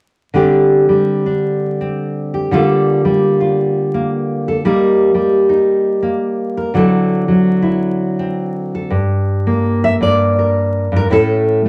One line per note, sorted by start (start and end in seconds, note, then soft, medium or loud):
0.34 2.51 D3 medium
0.34 0.88 G3 soft
0.34 1.80 C4 soft
0.34 1.26 D4 soft
0.34 2.33 G4 soft
0.89 2.52 G3 soft
1.26 2.53 D4 soft
1.81 2.50 C4 soft
2.34 2.54 G4 soft
2.51 4.69 D3 medium
2.51 3.04 G3 soft
2.51 3.93 A#3 soft
2.51 3.39 F4 medium
2.51 4.47 A4 medium
3.05 4.62 G3 soft
3.40 4.63 F4 soft
3.94 4.64 A#3 soft
4.48 4.63 A4 soft
4.65 5.13 G3 medium
4.65 6.01 A#3 medium
4.65 5.48 D#4 soft
4.65 6.56 A#4 medium
5.14 6.71 G3 soft
5.49 6.71 D#4 soft
6.02 6.74 A#3 soft
6.57 6.73 A#4 soft
6.74 8.90 D3 medium
6.74 7.27 F#3 soft
6.74 8.18 C4 soft
6.74 7.61 E4 soft
6.74 8.74 A4 medium
7.28 8.91 F#3 soft
7.62 8.90 E4 soft
8.19 8.91 C4 soft
8.75 8.91 A4 soft
8.90 9.99 G2 medium
9.47 11.07 A#3 medium
9.84 9.95 E5 medium
10.01 10.91 G2 medium
10.01 11.10 D5 medium
10.39 10.92 A#4 soft
10.92 11.10 G2 medium
10.96 11.11 A#4 medium
11.10 11.69 A2 medium
11.10 11.65 A3 soft
11.10 11.69 C#4 soft
11.10 11.69 E4 soft
11.10 11.69 A4 medium
11.65 11.69 A3 medium